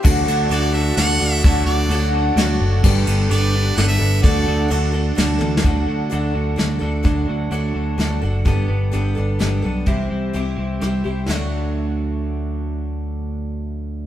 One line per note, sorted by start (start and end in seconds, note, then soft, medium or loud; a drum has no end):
0.03 0.25 D2 medium
0.03 0.50 D3 medium
0.03 0.48 F#3 medium
0.03 0.50 A3 medium
0.03 0.29 D4 loud
0.03 2.81 F#4 medium
0.03 0.28 F#4 medium
0.03 0.27 A4 medium
0.03 2.81 D5 medium
0.03 5.60 A5 medium
0.03 kick loud
0.03 crash loud
0.27 0.47 D2 medium
0.27 0.51 D4 medium
0.27 0.52 F#4 medium
0.27 0.52 A4 medium
0.27 ride medium
0.49 0.91 D2 medium
0.49 0.97 D3 medium
0.49 0.73 F#3 medium
0.49 0.74 A3 medium
0.49 0.76 D4 medium
0.49 0.74 F#4 medium
0.49 0.74 A4 medium
0.49 0.75 D5 loud
0.49 ride medium
0.74 0.96 A3 medium
0.74 0.99 D4 medium
0.74 0.98 F#4 medium
0.74 1.00 A4 medium
0.74 0.96 E5 medium
0.96 1.17 D2 medium
0.96 1.43 D3 loud
0.96 1.20 F#3 medium
0.96 1.21 A3 medium
0.96 1.44 D4 loud
0.96 1.45 F#4 loud
0.96 1.33 F#5 loud
0.96 snare medium
0.96 ride medium
1.00 1.46 A4 medium
1.21 1.41 D2 medium
1.21 1.44 A3 soft
1.21 1.45 D4 medium
1.21 1.44 F#4 medium
1.33 1.44 E5 loud
1.44 1.64 D2 loud
1.44 1.88 D3 medium
1.44 1.90 F#3 medium
1.44 1.92 A3 medium
1.44 1.69 D4 medium
1.44 1.67 F#4 medium
1.44 1.66 A4 medium
1.44 1.65 E5 loud
1.44 kick loud
1.44 ride medium
1.65 1.87 D2 medium
1.65 1.90 D4 medium
1.65 1.90 F#4 medium
1.65 1.92 A4 medium
1.65 2.10 D5 medium
1.89 2.30 D2 medium
1.89 2.35 D3 medium
1.89 2.36 F#3 medium
1.89 2.37 A3 medium
1.89 2.15 D4 medium
1.89 2.13 F#4 medium
1.89 2.13 A4 medium
1.89 ride medium
2.13 2.37 D4 medium
2.13 2.37 F#4 medium
2.13 2.39 A4 medium
2.36 2.57 D2 medium
2.36 2.82 D3 loud
2.36 2.83 F#3 medium
2.36 2.84 A3 medium
2.36 2.84 D4 medium
2.36 2.83 F#4 loud
2.36 2.85 A4 loud
2.36 snare medium
2.36 ride medium
2.60 2.80 F#1 medium
2.83 3.04 G1 loud
2.83 3.28 G3 medium
2.83 3.06 B3 medium
2.83 3.08 D4 medium
2.83 4.23 G4 medium
2.83 3.06 A4 medium
2.83 4.23 B4 medium
2.83 kick loud
2.83 crash medium
3.06 3.27 G1 medium
3.06 3.30 B3 medium
3.06 3.30 D4 medium
3.06 3.31 A4 medium
3.06 ride medium
3.29 3.70 G1 medium
3.29 3.76 G3 medium
3.29 3.54 B3 medium
3.29 3.55 D4 medium
3.29 3.53 A4 medium
3.29 3.78 D5 loud
3.29 ride medium
3.53 3.77 B3 medium
3.53 3.78 D4 medium
3.53 3.79 A4 medium
3.77 3.97 G1 medium
3.77 4.22 G3 medium
3.77 4.23 B3 loud
3.77 4.24 D4 loud
3.77 4.25 A4 loud
3.77 3.87 F#5 loud
3.77 snare loud
3.77 ride medium
3.88 4.21 E5 loud
3.99 4.21 G1 medium
3.99 4.23 B3 soft
3.99 4.22 D4 soft
3.99 4.22 A4 medium
4.22 4.44 D2 loud
4.22 4.69 D3 medium
4.22 4.67 F#3 medium
4.22 4.68 A3 medium
4.22 4.47 D4 medium
4.22 4.46 F#4 loud
4.22 5.63 F#4 medium
4.22 4.45 A4 loud
4.22 4.67 D5 medium
4.22 5.63 D5 medium
4.22 kick loud
4.22 ride medium
4.46 4.67 D2 medium
4.46 4.70 D4 medium
4.46 4.70 F#4 medium
4.46 4.71 A4 medium
4.68 5.11 D2 medium
4.68 5.16 D3 medium
4.68 4.92 F#3 medium
4.68 4.93 A3 medium
4.68 4.94 D4 medium
4.68 4.93 F#4 medium
4.68 ride medium
4.72 4.92 A4 medium
4.94 5.15 A3 medium
4.94 5.17 D4 medium
4.94 5.17 F#4 medium
4.94 5.18 A4 medium
5.15 5.38 D2 medium
5.15 5.62 D3 medium
5.15 5.39 F#3 medium
5.15 5.40 A3 medium
5.15 5.63 D4 medium
5.15 5.63 F#4 medium
5.15 snare loud
5.15 ride medium
5.19 5.63 A4 loud
5.39 5.61 D2 medium
5.39 5.62 A3 soft
5.39 5.62 D4 medium
5.39 5.63 A4 medium
5.39 high tom medium
5.57 snare loud
5.62 5.85 D2 medium
5.62 6.10 D3 medium
5.62 6.08 F#3 medium
5.62 6.10 A3 medium
5.62 5.89 D4 medium
5.62 5.88 F#4 medium
5.62 5.87 A4 medium
5.62 kick medium
5.62 closed hi-hat soft
5.87 6.09 D2 medium
5.87 6.11 D4 soft
5.87 6.12 F#4 medium
5.87 6.13 A4 medium
6.10 6.33 D2 medium
6.10 6.56 D3 medium
6.10 6.55 F#3 medium
6.10 6.57 A3 medium
6.10 6.35 D4 medium
6.10 6.34 F#4 medium
6.10 6.33 A4 loud
6.10 closed hi-hat soft
6.34 6.55 D2 medium
6.34 6.58 D4 soft
6.34 6.58 F#4 medium
6.34 6.59 A4 medium
6.56 6.79 D2 medium
6.56 7.03 D3 medium
6.56 6.80 F#3 medium
6.56 6.81 A3 medium
6.56 6.82 D4 medium
6.56 6.81 F#4 medium
6.56 6.80 A4 medium
6.56 snare medium
6.56 closed hi-hat medium
6.80 7.02 D2 medium
6.80 7.03 A3 soft
6.80 7.05 D4 medium
6.80 7.05 F#4 medium
6.80 7.06 A4 medium
7.03 7.25 D2 medium
7.03 7.50 D3 medium
7.03 7.50 F#3 medium
7.03 7.52 A3 medium
7.03 7.30 D4 medium
7.03 7.28 F#4 medium
7.03 7.28 A4 medium
7.03 kick medium
7.03 closed hi-hat medium
7.28 7.49 D2 medium
7.28 7.51 D4 medium
7.28 7.51 F#4 medium
7.28 7.53 A4 medium
7.51 7.72 D2 medium
7.51 7.96 D3 medium
7.51 7.97 F#3 medium
7.51 7.98 A3 medium
7.51 7.76 D4 medium
7.51 7.75 F#4 medium
7.51 7.73 A4 medium
7.51 closed hi-hat soft
7.74 7.96 D2 medium
7.74 7.97 D4 medium
7.74 7.98 F#4 medium
7.74 7.98 A4 medium
7.97 8.19 D2 medium
7.97 8.43 D3 medium
7.97 8.22 F#3 medium
7.97 8.22 A3 medium
7.97 8.23 D4 medium
7.97 8.22 F#4 medium
7.97 8.21 A4 medium
7.97 snare medium
7.97 closed hi-hat medium
8.22 8.43 F#1 medium
8.22 8.46 A3 soft
8.22 8.44 D4 soft
8.22 8.45 F#4 medium
8.22 8.44 A4 medium
8.45 8.67 G1 medium
8.45 8.92 G3 medium
8.45 8.68 B3 medium
8.45 8.69 D4 medium
8.45 8.67 A4 medium
8.45 kick medium
8.45 closed hi-hat medium
8.68 8.90 G1 medium
8.68 8.93 B3 medium
8.68 8.92 D4 soft
8.68 8.93 A4 medium
8.93 9.14 G1 medium
8.93 9.38 G3 medium
8.93 9.16 B3 medium
8.93 9.17 D4 medium
8.93 9.15 A4 medium
8.93 closed hi-hat soft
9.16 9.38 G1 medium
9.16 9.40 B3 medium
9.16 9.39 D4 medium
9.16 9.40 A4 medium
9.39 9.61 G1 medium
9.39 9.85 G3 medium
9.39 9.63 B3 medium
9.39 9.64 D4 medium
9.39 9.61 A4 medium
9.39 snare medium
9.39 closed hi-hat medium
9.63 9.85 B1 medium
9.63 9.86 B3 soft
9.63 9.86 D4 soft
9.63 9.85 A4 medium
9.86 10.08 C2 medium
9.86 10.32 C3 medium
9.86 10.32 E3 medium
9.86 10.33 G3 medium
9.86 10.11 C4 medium
9.86 10.10 E4 medium
9.86 10.09 G4 medium
9.86 kick medium
9.86 closed hi-hat soft
10.10 10.32 C2 medium
10.10 10.34 C4 soft
10.10 10.34 E4 medium
10.10 10.35 G4 medium
10.33 10.55 C2 medium
10.33 10.81 C3 medium
10.33 10.81 E3 medium
10.33 10.79 G3 medium
10.33 10.58 C4 medium
10.33 10.57 E4 medium
10.33 10.55 G4 medium
10.33 closed hi-hat soft
10.57 10.79 C2 medium
10.57 10.80 C4 medium
10.57 10.81 E4 medium
10.57 10.82 G4 medium
10.81 11.03 C2 medium
10.81 11.05 E3 medium
10.81 11.26 G3 medium
10.81 11.05 C4 medium
10.81 11.04 E4 medium
10.81 11.02 G4 medium
10.81 cross-stick medium
10.81 closed hi-hat medium
11.04 11.26 C2 medium
11.04 11.28 C4 medium
11.04 11.27 E4 medium
11.04 11.26 G4 medium
11.27 14.06 D2 medium
11.27 14.06 D3 medium
11.27 14.06 F#3 medium
11.27 14.06 A3 medium
11.27 14.06 D4 medium
11.27 14.06 F#4 medium
11.27 snare medium
11.27 crash medium